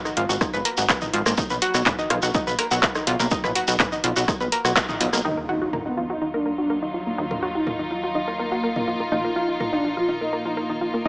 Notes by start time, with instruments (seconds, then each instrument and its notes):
0.05 synth arpeggio sound D#4, cross-stick, shekere
0.17 analog synth bass G#1, synth arpeggio sound F4, closed hi-hat
0.29 analog synth bass G#1, synth arpeggio sound F#4, shekere
0.41 synth arpeggio sound D#4, kick, cross-stick, shekere
0.53 analog synth bass G#1, synth arpeggio sound B4, shekere
0.65 synth arpeggio sound A#4, closed hi-hat
0.77 analog synth bass G#1, synth arpeggio sound F#4, shekere
0.89 synth arpeggio sound B4, kick, cross-stick, clap, shekere
1.01 synth arpeggio sound D#4, mid tom, shekere
1.14 analog synth bass G#1, synth arpeggio sound F4, closed hi-hat
1.26 analog synth bass G#1, synth arpeggio sound A#3, cross-stick, shekere
1.38 synth arpeggio sound D#4, kick, shekere
1.50 analog synth bass B1, synth arpeggio sound B4, shekere
1.62 synth arpeggio sound F#4, closed hi-hat
1.74 analog synth bass B1, synth arpeggio sound F#4, cross-stick, shekere
1.86 synth arpeggio sound B4, kick, clap, mid tom, shekere
1.99 synth arpeggio sound D#4, shekere
2.10 analog synth bass B1, synth arpeggio sound F4, cross-stick, closed hi-hat
2.22 analog synth bass B1, synth arpeggio sound F#4, shekere
2.34 synth arpeggio sound D#4, kick, shekere
2.47 analog synth bass B1, synth arpeggio sound B4, shekere
2.59 synth arpeggio sound A#4, cross-stick, closed hi-hat
2.71 analog synth bass B1, synth arpeggio sound F#4, shekere
2.83 synth arpeggio sound B4, kick, clap, shekere
2.95 synth arpeggio sound D#4, cross-stick, shekere
3.07 analog synth bass B1, synth arpeggio sound F4, closed hi-hat
3.20 analog synth bass B1, synth arpeggio sound A#3, shekere
3.31 synth arpeggio sound D#4, kick, shekere
3.44 analog synth bass B1, synth arpeggio sound B4, cross-stick, mid tom, shekere
3.55 synth arpeggio sound F#4, closed hi-hat
3.68 analog synth bass B1, synth arpeggio sound F#4, shekere
3.80 synth arpeggio sound B4, kick, cross-stick, clap, mid tom, shekere
3.92 synth arpeggio sound D#4, shekere
4.04 analog synth bass B1, synth arpeggio sound F4, closed hi-hat
4.16 analog synth bass B1, synth arpeggio sound F#4, shekere
4.28 synth arpeggio sound D#4, kick, cross-stick, shekere
4.41 analog synth bass B1, synth arpeggio sound B4, shekere
4.52 synth arpeggio sound A#4, closed hi-hat
4.65 analog synth bass B1, synth arpeggio sound F#4, cross-stick, shekere
4.76 synth arpeggio sound B4, kick, clap, shekere
4.89 synth arpeggio sound D#4, mid tom, shekere
5.01 analog synth bass B1, synth arpeggio sound F4, closed hi-hat
5.13 analog synth bass B1, synth arpeggio sound A#3, cross-stick, shekere
5.25 analog synth bass D#2, string section F#3 D#4 F4, synth arpeggio sound D#4, analog polysynth D#4, impact
5.37 synth arpeggio sound A#4
5.49 analog polysynth D#4, synth arpeggio sound F#4
5.62 synth arpeggio sound F#4
5.73 synth arpeggio sound A#4, mid tom
5.86 analog polysynth B3, synth arpeggio sound D#4
5.97 synth arpeggio sound F4
6.10 analog polysynth D#4, synth arpeggio sound F#4
6.21 synth arpeggio sound D#4
6.34 analog polysynth D4, synth arpeggio sound A#4
6.46 synth arpeggio sound A#4
6.58 analog polysynth D4, synth arpeggio sound F#4
6.70 synth arpeggio sound A#4
6.82 synth arpeggio sound D#4
6.94 synth arpeggio sound F4
7.07 synth arpeggio sound A#3
7.18 analog synth bass D#2, synth arpeggio sound D#4
7.31 synth arpeggio sound A#4, mid tom
7.42 synth arpeggio sound F#4
7.55 analog polysynth D#4, synth arpeggio sound F#4
7.67 synth arpeggio sound A#4, mid tom
7.79 synth arpeggio sound D#4
7.91 synth arpeggio sound F4
8.03 synth arpeggio sound F#4
8.15 synth arpeggio sound D#4
8.28 synth arpeggio sound A#4
8.39 analog polysynth A#3, synth arpeggio sound A#4
8.52 synth arpeggio sound F#4
8.63 synth arpeggio sound A#4
8.76 analog polysynth A#3, synth arpeggio sound D#4, mid tom
8.88 synth arpeggio sound F4
9.00 synth arpeggio sound A#3
9.12 analog synth bass A#1, string section A#3, synth arpeggio sound D#4, analog polysynth F4
9.24 synth arpeggio sound A#4
9.36 synth arpeggio sound F4, analog polysynth F4
9.49 synth arpeggio sound F4
9.60 synth arpeggio sound A#4, mid tom
9.73 analog polysynth D4, synth arpeggio sound D#4
9.84 synth arpeggio sound F4
9.97 synth arpeggio sound F4, analog polysynth F4
10.09 synth arpeggio sound D#4
10.21 analog polysynth D#4, synth arpeggio sound A#4
10.33 synth arpeggio sound A#4
10.45 analog polysynth D#4, synth arpeggio sound F4
10.57 synth arpeggio sound A#4
10.70 synth arpeggio sound D#4
10.81 synth arpeggio sound F4
10.94 synth arpeggio sound A#3